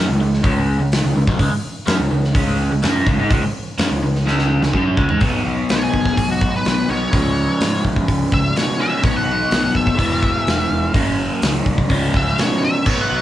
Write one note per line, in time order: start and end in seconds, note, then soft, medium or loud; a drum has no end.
0.08 0.19 C#2 medium
0.08 0.19 C#3 medium
0.08 0.19 G#3 medium
0.20 0.43 C#2 medium
0.20 0.39 C#3 medium
0.20 0.39 G#3 medium
0.33 snare soft
0.43 0.77 C#2 medium
0.43 0.79 C#3 medium
0.43 0.79 G#3 medium
0.43 0.80 C#4 medium
0.43 kick loud
0.43 open hi-hat soft
0.79 1.02 C#2 medium
0.79 0.99 C#3 medium
0.79 0.99 G#3 medium
0.92 snare loud
0.92 open hi-hat medium
1.04 1.15 C#2 medium
1.04 1.14 C#3 medium
1.04 1.15 G#3 medium
1.15 1.27 C#2 medium
1.15 1.27 C#3 medium
1.15 1.28 G#3 medium
1.27 1.39 B1 loud
1.27 1.38 B2 medium
1.27 1.39 F#3 loud
1.27 kick loud
1.39 1.51 C#2 medium
1.39 1.50 C#3 loud
1.39 1.51 G#3 loud
1.39 kick medium
1.39 open hi-hat medium
1.51 muted overdriven electric guitar stroke medium
1.51 muted picked electric bass stroke soft
1.86 1.99 F#2 medium
1.86 1.98 F#3 medium
1.86 1.98 C#4 medium
1.86 snare loud
1.86 open hi-hat medium
1.98 2.10 C#2 medium
1.98 2.10 C#3 medium
1.98 2.10 G#3 medium
2.11 2.34 C#2 medium
2.11 2.30 C#3 medium
2.11 2.30 G#3 medium
2.24 snare soft
2.35 2.68 C#2 medium
2.35 2.70 C#3 medium
2.35 2.70 G#3 medium
2.35 2.71 C#4 loud
2.35 kick loud
2.35 open hi-hat medium
2.71 2.83 C#2 medium
2.71 2.82 C#3 medium
2.71 2.83 G#3 medium
2.82 3.06 F#2 medium
2.82 3.06 F#3 medium
2.82 3.06 C#4 medium
2.82 3.06 F#4 loud
2.82 snare loud
2.82 open hi-hat medium
3.06 3.18 C#2 medium
3.06 3.18 C#3 medium
3.06 3.17 G#3 loud
3.06 kick loud
3.19 3.30 G#2 medium
3.19 3.30 G#3 medium
3.19 3.30 D#4 loud
3.31 3.42 C#2 medium
3.31 3.42 C#3 loud
3.31 3.42 G#3 loud
3.31 kick loud
3.31 open hi-hat medium
3.43 muted overdriven electric guitar stroke medium
3.43 muted picked electric bass stroke soft
3.78 3.90 F#2 medium
3.78 3.90 F#3 medium
3.78 3.90 C#4 medium
3.78 snare loud
3.78 open hi-hat medium
3.90 4.02 C#2 medium
3.90 4.01 C#3 medium
3.90 4.02 G#3 medium
4.03 4.25 C#2 medium
4.03 4.22 C#3 medium
4.03 4.22 G#3 medium
4.15 snare soft
4.26 4.60 C#2 medium
4.26 4.60 C#3 medium
4.26 4.61 G#3 medium
4.26 4.62 C#4 loud
4.26 snare medium
4.38 snare medium
4.62 4.73 C#2 medium
4.62 4.73 C#3 medium
4.62 4.74 G#3 medium
4.62 snare medium
4.73 4.96 F#2 medium
4.73 4.97 F#3 medium
4.73 4.97 C#4 medium
4.73 4.97 F#4 medium
4.73 kick medium
4.97 5.09 C#2 loud
4.97 5.09 C#3 medium
4.97 5.08 G#3 medium
4.97 kick medium
5.09 5.21 G#2 medium
5.09 5.21 G#3 medium
5.09 5.21 D#4 loud
5.09 floor tom medium
5.20 5.38 B1 medium
5.20 6.87 B2 medium
5.20 6.87 F#3 medium
5.20 6.88 B3 medium
5.20 6.87 D#4 medium
5.20 kick loud
5.20 open hi-hat soft
5.46 5.63 B1 medium
5.69 5.87 B1 medium
5.69 5.82 C#5 medium
5.69 snare loud
5.69 open hi-hat medium
5.83 6.29 G#4 medium
5.94 6.10 F#1 medium
5.94 kick medium
6.05 kick medium
6.05 snare soft
6.17 6.51 B1 medium
6.17 kick medium
6.17 open hi-hat medium
6.31 6.53 F#4 medium
6.41 kick medium
6.56 6.66 B4 medium
6.65 6.83 B1 medium
6.65 6.90 B4 medium
6.65 snare medium
6.65 open hi-hat medium
6.88 7.06 B1 medium
6.88 7.12 B2 medium
6.88 7.12 F#3 medium
6.88 7.12 B3 medium
6.88 7.11 D#4 medium
6.88 7.83 C#5 medium
7.12 7.47 C#2 medium
7.12 8.78 C#3 medium
7.12 8.79 F3 medium
7.12 8.79 G#3 loud
7.12 8.78 C#4 medium
7.12 kick loud
7.12 open hi-hat medium
7.61 7.78 G#2 medium
7.61 snare loud
7.61 open hi-hat medium
7.85 8.01 B1 medium
7.85 kick medium
7.96 kick medium
8.08 8.25 C#2 medium
8.08 kick medium
8.08 open hi-hat medium
8.32 8.49 C#2 medium
8.32 8.56 E5 loud
8.32 kick medium
8.56 8.90 B2 medium
8.56 8.80 C#5 medium
8.56 snare medium
8.56 open hi-hat soft
8.80 9.03 C#3 medium
8.80 9.03 F3 medium
8.80 9.03 G#3 medium
8.80 9.02 C#4 medium
8.80 9.04 E5 loud
9.03 9.21 B1 medium
9.03 9.97 B2 medium
9.03 9.98 F#3 medium
9.03 9.98 B3 medium
9.03 9.99 D#4 loud
9.03 9.16 C#5 medium
9.03 kick loud
9.03 open hi-hat medium
9.16 9.63 F#5 medium
9.27 9.44 B1 medium
9.51 9.69 B1 medium
9.51 snare loud
9.51 open hi-hat medium
9.64 9.76 F#5 medium
9.75 9.99 F#1 medium
9.75 10.92 E5 loud
9.75 kick medium
9.87 kick medium
9.97 10.33 E1 medium
9.97 10.93 E3 medium
9.97 10.93 G#3 medium
9.97 10.94 B3 medium
9.97 10.94 E4 medium
9.97 kick medium
9.97 open hi-hat medium
10.23 kick medium
10.47 10.64 E1 medium
10.47 snare loud
10.47 open hi-hat soft
10.71 10.88 E1 medium
10.93 11.28 F#1 medium
10.93 11.88 F#2 medium
10.93 11.88 C#3 medium
10.93 11.89 F#3 medium
10.93 11.90 A#3 medium
10.93 11.90 C#4 medium
10.93 kick loud
10.93 open hi-hat medium
11.42 11.60 C#2 medium
11.42 snare loud
11.42 open hi-hat medium
11.66 11.83 C2 medium
11.66 kick medium
11.78 kick medium
11.89 12.07 C#2 medium
11.89 12.84 C#3 medium
11.89 12.85 F3 medium
11.89 12.85 G#3 medium
11.89 12.86 C#4 medium
11.89 kick medium
11.89 open hi-hat medium
12.14 12.31 C#2 medium
12.14 12.39 E5 loud
12.14 kick medium
12.38 12.72 B2 medium
12.38 12.63 C#5 medium
12.38 snare loud
12.38 open hi-hat medium
12.64 12.87 E5 loud
12.85 13.03 B1 medium
12.85 13.22 B2 medium
12.85 13.22 F#3 medium
12.85 13.22 B3 medium
12.85 13.22 D#4 medium
12.85 kick loud
12.85 crash medium
12.90 13.00 C#5 loud
13.01 13.22 F#5 medium
13.11 13.22 B1 medium